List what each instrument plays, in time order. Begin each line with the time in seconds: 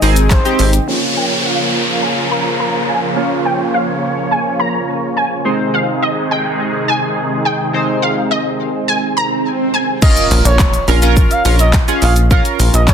Already playing: supersaw synth C3 D#3 G#3 D#4 G#4
0.02 analog synth bass G#1, synth keys C4 D#4 G#4, open hi-hat, shaker
0.16 closed hi-hat, shaker
0.30 analog synth lead C5, kick, snare, clap, shaker
0.45 synth keys C4 D#4 G4, closed hi-hat, shaker
0.59 analog synth bass G#1, open hi-hat, shaker
0.73 closed hi-hat, shaker
0.88 supersaw synth C#3 F3 A#3 F4 A#4, synth keys A#3 C#4 F4 C#5, downlifter
1.17 synth pluck G5
1.45 synth pluck F5
2.03 synth pluck G#5
2.31 synth pluck A#5
2.60 synth pluck A#5
2.88 synth pluck G#5
3.16 synth keys A#3 C#4 F4 C#5, supersaw synth C#5
3.45 synth pluck G5
3.74 synth pluck F5
4.31 synth pluck G#5
4.60 synth pluck A#5
5.17 synth pluck G#5
5.45 supersaw synth C3 D#3 G#3 D#4 G#4, synth keys G#3 C4 D#4 C5, swell
5.74 synth pluck F5
6.02 synth pluck D#5
6.31 synth pluck G5
6.88 synth pluck G#5
7.45 synth pluck G5
7.73 synth keys G#3 C4 D#4 C5
8.02 synth pluck F5
8.31 synth pluck D#5
8.88 synth pluck G#5
9.17 synth pluck A#5
9.74 synth pluck G#5
10.02 synth keys C#4 F4 A#4, analog synth lead D#5, kick, crash, impact, shaker
10.17 closed hi-hat, shaker
10.31 analog synth bass A#1, open hi-hat, shaker
10.45 analog synth bass A#1, analog synth lead C#5, closed hi-hat, shaker
10.59 kick, snare, clap, shaker
10.73 closed hi-hat, shaker
10.88 analog synth bass A#1, synth keys C#4 F4 A#4, open hi-hat, shaker
11.02 synth keys C#4 F4 A#4, closed hi-hat, shaker
11.16 kick, shaker
11.31 analog synth lead F5, closed hi-hat, shaker
11.45 analog synth bass A#1, synth keys C#4 F4 A#4, open hi-hat, shaker
11.59 analog synth lead D#5, closed hi-hat, shaker
11.73 kick, snare, clap, shaker
11.88 synth keys C#4 F4 G#4, closed hi-hat, shaker
12.02 analog synth bass A#1, analog synth lead F5, open hi-hat, shaker
12.16 closed hi-hat, shaker
12.31 synth keys C#4 F4 A#4, analog synth lead F5, kick, shaker
12.45 closed hi-hat, shaker
12.60 analog synth bass A#1, open hi-hat, shaker
12.74 analog synth bass A#1, analog synth lead D#5, closed hi-hat, shaker
12.88 analog synth lead C#5, kick, snare, clap, shaker